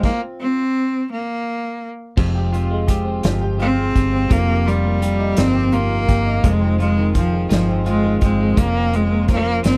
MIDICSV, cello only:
0, 0, Header, 1, 2, 480
1, 0, Start_track
1, 0, Key_signature, -4, "minor"
1, 0, Tempo, 712589
1, 21, Time_signature, 6, 3, 24, 8
1, 6583, End_track
2, 0, Start_track
2, 0, Title_t, "Cello"
2, 0, Program_c, 0, 42
2, 28, Note_on_c, 0, 58, 85
2, 135, Note_off_c, 0, 58, 0
2, 271, Note_on_c, 0, 60, 91
2, 720, Note_off_c, 0, 60, 0
2, 753, Note_on_c, 0, 58, 75
2, 1261, Note_off_c, 0, 58, 0
2, 2431, Note_on_c, 0, 60, 97
2, 2907, Note_on_c, 0, 58, 104
2, 2917, Note_off_c, 0, 60, 0
2, 3149, Note_on_c, 0, 55, 91
2, 3159, Note_off_c, 0, 58, 0
2, 3625, Note_on_c, 0, 60, 102
2, 3635, Note_off_c, 0, 55, 0
2, 3863, Note_on_c, 0, 58, 97
2, 3873, Note_off_c, 0, 60, 0
2, 4341, Note_on_c, 0, 56, 90
2, 4351, Note_off_c, 0, 58, 0
2, 4579, Note_off_c, 0, 56, 0
2, 4583, Note_on_c, 0, 56, 93
2, 4805, Note_off_c, 0, 56, 0
2, 4822, Note_on_c, 0, 53, 93
2, 5044, Note_off_c, 0, 53, 0
2, 5058, Note_on_c, 0, 53, 90
2, 5282, Note_off_c, 0, 53, 0
2, 5304, Note_on_c, 0, 56, 101
2, 5525, Note_off_c, 0, 56, 0
2, 5548, Note_on_c, 0, 56, 87
2, 5788, Note_on_c, 0, 58, 98
2, 5798, Note_off_c, 0, 56, 0
2, 6031, Note_on_c, 0, 56, 96
2, 6041, Note_off_c, 0, 58, 0
2, 6264, Note_off_c, 0, 56, 0
2, 6271, Note_on_c, 0, 58, 100
2, 6488, Note_off_c, 0, 58, 0
2, 6503, Note_on_c, 0, 60, 95
2, 6583, Note_off_c, 0, 60, 0
2, 6583, End_track
0, 0, End_of_file